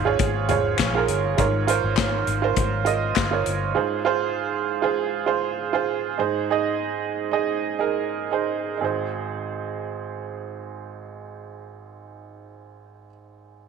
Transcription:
0.00 0.18 G#1 medium
0.00 1.39 G#2 medium
0.00 0.05 F4 medium
0.00 0.06 G#4 medium
0.00 1.40 C5 medium
0.00 0.07 C#5 medium
0.05 0.39 F4 medium
0.05 0.39 G#4 medium
0.05 0.40 C#5 medium
0.19 0.75 G#1 medium
0.19 kick loud
0.19 closed hi-hat medium
0.49 0.83 F4 medium
0.49 0.84 G#4 medium
0.49 0.84 C#5 medium
0.49 closed hi-hat medium
0.49 floor tom medium
0.79 1.07 A#1 medium
0.79 kick medium
0.79 snare medium
0.79 clap medium
0.79 closed hi-hat medium
0.95 1.28 F4 medium
0.95 1.29 G#4 medium
0.95 1.29 A#4 medium
1.08 1.36 G1 medium
1.08 closed hi-hat medium
1.38 1.81 G#1 medium
1.38 2.24 G#2 medium
1.38 1.61 F4 medium
1.38 1.62 A#4 medium
1.38 1.62 C#5 medium
1.38 kick medium
1.38 closed hi-hat medium
1.67 2.24 F4 medium
1.67 2.24 A#4 medium
1.67 2.25 C5 medium
1.67 closed hi-hat medium
1.84 2.24 G#1 medium
1.97 kick medium
1.97 snare medium
1.97 clap medium
1.97 closed hi-hat medium
2.27 2.55 G#1 medium
2.27 closed hi-hat medium
2.42 2.76 F4 medium
2.42 2.77 A#4 medium
2.42 2.77 C5 medium
2.57 3.12 G#1 medium
2.57 kick medium
2.57 closed hi-hat medium
2.85 3.20 F4 medium
2.85 3.20 A#4 medium
2.85 3.21 D#5 medium
2.85 closed hi-hat soft
3.16 3.44 G1 medium
3.16 kick medium
3.16 snare loud
3.16 clap medium
3.16 closed hi-hat medium
3.31 3.65 F4 medium
3.31 3.66 A#4 medium
3.31 3.66 C#5 medium
3.46 3.74 G1 medium
3.46 closed hi-hat medium
3.75 4.61 G#2 medium
3.75 3.99 F4 medium
3.75 3.99 G#4 medium
3.75 3.99 C5 medium
4.05 4.62 F4 medium
4.05 4.62 G#4 medium
4.05 4.63 C5 medium
4.82 5.16 F4 medium
4.82 5.16 G#4 medium
4.82 5.17 C5 medium
5.26 5.61 F4 medium
5.26 5.61 G#4 medium
5.26 5.62 C5 medium
5.73 6.08 F4 medium
5.73 6.08 G#4 medium
5.73 6.09 C5 medium
6.18 7.10 G#2 medium
6.18 6.43 D#4 medium
6.18 6.43 G#4 medium
6.18 6.44 C5 medium
6.50 7.11 D#4 medium
6.50 7.11 G#4 medium
6.50 7.12 D#5 medium
7.31 7.68 D#4 medium
7.31 7.69 G#4 medium
7.31 7.69 D#5 medium
7.79 8.18 D#4 medium
7.79 8.18 G#4 medium
7.79 8.19 A#4 medium
8.31 8.70 D#4 medium
8.31 8.71 G#4 medium
8.31 8.71 C5 medium
8.77 13.08 G#1 medium
8.77 13.06 D#4 medium
8.77 13.07 G#4 soft
8.85 13.09 C5 medium

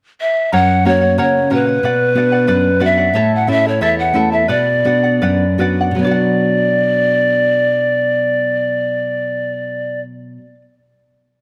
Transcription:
0.21 0.51 E5 medium
0.52 1.16 F#2 medium
0.52 0.84 A#4 medium
0.52 0.85 C#5 medium
0.52 0.86 F#5 medium
0.52 0.89 F#5 medium
0.85 1.38 A#3 soft
0.85 1.38 C#4 soft
0.85 1.38 F#4 medium
0.85 1.02 A#4 soft
0.85 1.01 C#5 medium
0.85 1.19 C#5 medium
0.85 1.00 F#5 medium
1.01 1.17 C#5 soft
1.01 1.18 F#5 soft
1.18 1.82 C#3 medium
1.18 1.50 A#4 medium
1.18 1.51 C#5 medium
1.18 1.55 C#5 medium
1.18 1.52 F#5 medium
1.50 1.77 A#2 soft
1.50 1.77 C#4 soft
1.50 1.77 F#4 soft
1.50 1.67 A#4 medium
1.50 2.86 B4 medium
1.50 1.67 C#5 medium
1.50 1.66 F#5 medium
1.67 1.84 C#5 soft
1.67 1.84 F#5 soft
1.83 2.47 B2 medium
1.83 2.15 B4 medium
1.83 2.16 D5 medium
1.83 2.17 F#5 medium
2.15 2.68 B3 soft
2.15 2.68 D4 soft
2.15 2.68 F#4 soft
2.15 2.32 B4 soft
2.15 2.32 D5 soft
2.15 2.31 F#5 medium
2.32 2.47 D5 soft
2.32 2.47 F#5 soft
2.47 3.12 F#2 medium
2.47 2.79 B4 medium
2.47 2.79 D5 medium
2.47 2.80 F#5 medium
2.80 3.07 B3 soft
2.80 3.07 D4 soft
2.80 3.08 F#4 medium
2.80 2.97 B4 medium
2.80 2.98 D5 medium
2.80 2.96 F#5 medium
2.85 3.32 E5 medium
2.98 3.15 D5 soft
2.98 3.14 F#5 soft
3.14 3.78 A2 medium
3.14 3.47 E4 medium
3.14 3.47 A4 medium
3.14 3.48 C#5 medium
3.14 3.46 E5 medium
3.14 3.48 A5 medium
3.35 3.52 F#5 medium
3.47 4.01 A3 soft
3.47 4.01 C#4 soft
3.47 3.64 E4 soft
3.47 4.02 E4 soft
3.47 3.65 A4 soft
3.47 3.64 E5 soft
3.47 3.69 E5 medium
3.47 3.64 A5 medium
3.66 3.81 E4 soft
3.66 3.81 A4 soft
3.66 3.82 C#5 medium
3.66 3.81 A5 soft
3.81 4.47 E2 medium
3.81 4.14 E4 medium
3.81 4.15 A4 medium
3.81 4.15 C#5 medium
3.81 4.14 E5 medium
3.81 3.98 E5 medium
3.81 4.15 A5 medium
3.99 4.34 F#5 medium
4.13 4.41 A3 soft
4.13 4.42 C#4 soft
4.13 4.42 E4 medium
4.13 4.32 E4 medium
4.13 4.32 A4 medium
4.13 4.32 E5 medium
4.13 4.31 A5 medium
4.32 4.50 E4 soft
4.32 4.48 A4 soft
4.32 4.51 E5 medium
4.32 4.49 A5 soft
4.48 5.19 B2 medium
4.48 4.84 B4 medium
4.48 4.85 D5 medium
4.48 5.60 D5 medium
4.48 4.85 F#5 medium
4.84 5.44 B3 soft
4.84 5.45 D4 soft
4.84 5.45 F#4 soft
4.84 5.03 B4 soft
4.84 5.04 D5 soft
4.84 5.02 F#5 medium
5.04 5.21 D5 soft
5.04 5.22 F#5 soft
5.22 5.97 F#2 medium
5.22 5.58 B4 medium
5.22 5.59 D5 medium
5.22 5.60 F#5 medium
5.58 5.91 B3 soft
5.58 5.91 D4 soft
5.58 5.91 F#4 medium
5.58 5.79 B4 medium
5.58 5.80 D5 medium
5.58 5.80 F#5 medium
5.81 5.96 D5 soft
5.81 6.00 F#5 soft
5.91 10.37 B2 soft
5.91 10.41 F#3 soft
5.96 10.45 B3 soft
5.96 10.46 B4 medium
5.96 10.00 D5 medium
6.03 10.49 D4 soft
6.03 10.53 F#4 medium
6.03 10.55 D5 medium
6.11 10.61 F#5 medium

